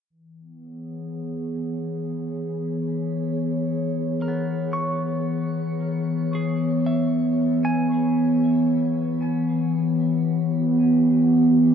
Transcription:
0.10 11.75 E3 medium
0.40 11.75 B3 medium
0.56 8.63 G#4 medium
0.62 11.26 C#5 medium
4.22 6.56 A#4 soft
4.28 7.92 B3 soft
4.73 7.06 C#6 medium
6.35 8.83 G#4 soft
6.86 7.85 E5 medium
7.65 8.84 G#5 medium
9.46 11.75 G4 medium

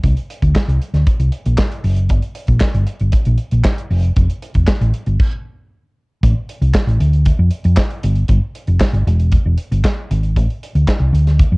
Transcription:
0.03 0.13 C2 loud
0.03 kick medium
0.03 closed hi-hat medium
0.17 closed hi-hat soft
0.30 closed hi-hat medium
0.42 0.52 D2 medium
0.42 kick medium
0.42 closed hi-hat soft
0.55 kick loud
0.55 snare loud
0.55 clap medium
0.68 0.78 C2 medium
0.68 closed hi-hat soft
0.82 closed hi-hat medium
0.94 1.03 D2 medium
0.94 snare soft
0.94 closed hi-hat soft
1.07 kick loud
1.07 closed hi-hat medium
1.19 1.29 C2 medium
1.19 closed hi-hat soft
1.32 closed hi-hat medium
1.45 1.55 A#1 loud
1.45 closed hi-hat medium
1.58 kick loud
1.58 snare loud
1.58 clap loud
1.72 closed hi-hat soft
1.84 2.10 F#1 medium
1.84 open hi-hat medium
1.96 closed hi-hat soft
2.09 2.19 G1 loud
2.09 kick loud
2.09 closed hi-hat medium
2.22 closed hi-hat soft
2.35 closed hi-hat medium
2.47 2.58 A#1 medium
2.47 kick medium
2.47 closed hi-hat soft
2.60 kick medium
2.60 snare loud
2.60 clap medium
2.74 2.84 G1 medium
2.74 closed hi-hat soft
2.87 closed hi-hat medium
3.00 3.10 G1 medium
3.00 closed hi-hat soft
3.12 kick loud
3.12 closed hi-hat medium
3.25 3.36 A#1 medium
3.25 closed hi-hat soft
3.38 closed hi-hat medium
3.51 3.62 A#1 medium
3.51 closed hi-hat medium
3.64 kick loud
3.64 snare loud
3.64 clap loud
3.78 closed hi-hat medium
3.90 4.09 F1 medium
3.90 open hi-hat medium
4.03 closed hi-hat soft
4.16 4.26 F1 loud
4.16 kick loud
4.16 closed hi-hat medium
4.30 closed hi-hat soft
4.42 closed hi-hat medium
4.54 4.64 E1 medium
4.54 kick medium
4.54 closed hi-hat soft
4.67 kick loud
4.67 snare loud
4.67 clap medium
4.81 4.91 A1 medium
4.81 closed hi-hat soft
4.94 closed hi-hat medium
5.06 5.16 G1 medium
5.06 closed hi-hat soft
5.19 kick loud
5.19 crash medium
6.23 6.33 A1 loud
6.23 kick loud
6.23 closed hi-hat medium
6.49 closed hi-hat medium
6.62 6.71 C2 medium
6.62 closed hi-hat soft
6.74 kick loud
6.74 snare loud
6.74 clap medium
6.87 6.97 A1 medium
6.87 closed hi-hat soft
7.00 7.29 D2 medium
7.00 closed hi-hat medium
7.13 closed hi-hat soft
7.25 kick loud
7.25 closed hi-hat medium
7.39 7.48 F2 medium
7.51 closed hi-hat medium
7.64 7.74 F2 loud
7.64 closed hi-hat soft
7.77 kick loud
7.77 snare loud
7.77 clap loud
7.90 closed hi-hat soft
8.03 8.23 G1 loud
8.03 closed hi-hat medium
8.15 closed hi-hat soft
8.28 8.39 G1 loud
8.28 kick loud
8.28 closed hi-hat medium
8.55 closed hi-hat medium
8.67 8.77 F1 medium
8.67 closed hi-hat soft
8.80 kick medium
8.80 snare loud
8.80 clap medium
8.93 9.03 G1 medium
8.93 closed hi-hat soft
9.07 9.35 E1 loud
9.07 closed hi-hat medium
9.20 closed hi-hat soft
9.32 kick loud
9.32 closed hi-hat medium
9.46 9.55 E1 medium
9.58 closed hi-hat medium
9.71 9.81 G1 medium
9.71 closed hi-hat medium
9.84 kick loud
9.84 snare loud
9.84 clap medium
10.11 10.37 G#1 loud
10.11 closed hi-hat medium
10.23 closed hi-hat soft
10.36 10.46 A1 loud
10.36 kick medium
10.36 closed hi-hat medium
10.50 closed hi-hat soft
10.63 closed hi-hat medium
10.75 10.84 D2 medium
10.75 closed hi-hat soft
10.88 kick loud
10.88 snare loud
10.88 clap medium
11.00 11.09 C2 medium
11.13 11.41 D2 loud
11.13 closed hi-hat medium
11.27 snare soft
11.27 closed hi-hat soft
11.39 kick loud
11.39 closed hi-hat medium
11.52 11.57 F2 medium

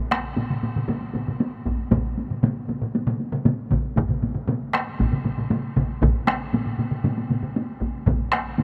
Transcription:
0.11 taiko rim medium
0.11 taiko high soft
0.24 taiko high soft
0.36 taiko low-mid medium
0.36 taiko mid medium
0.36 taiko high medium
0.50 taiko low-mid medium
0.50 taiko mid medium
0.50 taiko high soft
0.63 taiko low-mid medium
0.63 taiko mid medium
0.63 taiko high soft
0.76 taiko low-mid medium
0.76 taiko mid medium
0.76 taiko high soft
0.88 taiko low-mid medium
0.88 taiko mid medium
0.88 taiko high medium
1.01 taiko high soft
1.14 taiko low-mid medium
1.14 taiko mid medium
1.14 taiko high soft
1.27 taiko low-mid medium
1.27 taiko mid medium
1.27 taiko high soft
1.40 taiko high medium
1.53 taiko high soft
1.66 taiko medium
1.66 taiko high soft
1.79 taiko high soft
1.91 taiko medium
1.91 taiko low-mid medium
1.91 taiko mid medium
1.91 taiko high medium
2.05 taiko high soft
2.18 taiko high medium
2.30 taiko low-mid medium
2.30 taiko mid medium
2.30 taiko high soft
2.43 taiko low-mid medium
2.43 taiko mid medium
2.43 taiko high medium
2.56 taiko high soft
2.68 taiko low-mid medium
2.68 taiko mid medium
2.68 taiko high soft
2.81 taiko low-mid medium
2.81 taiko mid medium
2.81 taiko high soft
2.95 taiko high medium
3.07 taiko low-mid medium
3.07 taiko mid medium
3.07 taiko high soft
3.20 taiko high soft
3.32 taiko low-mid medium
3.32 taiko mid medium
3.32 taiko high soft
3.45 taiko low-mid medium
3.45 taiko mid medium
3.45 taiko high medium
3.59 taiko high soft
3.71 taiko medium
3.71 taiko low-mid medium
3.71 taiko mid medium
3.71 taiko high soft
3.84 taiko high soft
3.97 taiko medium
3.97 taiko low-mid medium
3.97 taiko mid medium
3.97 taiko high medium
4.09 taiko low-mid medium
4.09 taiko mid medium
4.09 taiko high soft
4.22 taiko low-mid medium
4.22 taiko mid medium
4.22 taiko high soft
4.35 taiko low-mid medium
4.35 taiko mid medium
4.35 taiko high soft
4.48 taiko low-mid medium
4.48 taiko mid medium
4.48 taiko high medium
4.73 taiko rim medium
4.73 taiko high soft
4.87 taiko high soft
4.99 taiko medium
4.99 taiko low-mid medium
4.99 taiko mid medium
4.99 taiko high medium
5.12 taiko low-mid medium
5.12 taiko mid medium
5.12 taiko high soft
5.25 taiko low-mid medium
5.25 taiko mid medium
5.25 taiko high soft
5.38 taiko low-mid medium
5.38 taiko mid medium
5.38 taiko high soft
5.51 taiko low-mid medium
5.51 taiko mid medium
5.51 taiko high medium
5.64 taiko high soft
5.76 taiko medium
5.76 taiko low-mid medium
5.76 taiko mid medium
5.76 taiko high medium
5.89 taiko high soft
6.02 taiko medium
6.02 taiko low-mid medium
6.02 taiko mid medium
6.02 taiko high medium
6.15 taiko high soft
6.27 taiko rim medium
6.27 taiko high medium
6.40 taiko high soft
6.53 taiko low-mid medium
6.53 taiko mid medium
6.53 taiko high medium
6.65 taiko low-mid medium
6.65 taiko mid medium
6.65 taiko high soft
6.78 taiko low-mid medium
6.78 taiko mid medium
6.78 taiko high soft
6.91 taiko low-mid medium
6.91 taiko mid medium
6.91 taiko high soft
7.04 taiko low-mid medium
7.04 taiko mid medium
7.04 taiko high medium
7.17 taiko high soft
7.30 taiko low-mid medium
7.30 taiko mid medium
7.30 taiko high soft
7.42 taiko low-mid medium
7.42 taiko mid medium
7.42 taiko high soft
7.56 taiko high medium
7.69 taiko high soft
7.81 taiko medium
7.81 taiko high soft
7.95 taiko high soft
8.06 taiko medium
8.06 taiko low-mid medium
8.06 taiko mid loud
8.06 taiko high medium
8.20 taiko high soft
8.32 taiko rim medium
8.32 taiko high soft
8.46 taiko high soft
8.58 taiko low-mid medium
8.58 taiko mid medium
8.58 taiko high medium

